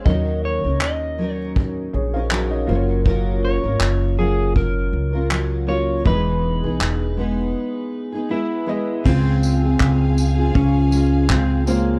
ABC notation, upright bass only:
X:1
M:4/4
L:1/16
Q:"Swing 16ths" 1/4=80
K:Db
V:1 name="Upright bass" clef=bass
E,,3 D,, E,,6 B,,,4 G,,,2- | G,,,3 A,,, G,,,6 D,,6 | =E,,,3 =B,,, E,,,4 z8 | D,,4 D,,4 D,,8 |]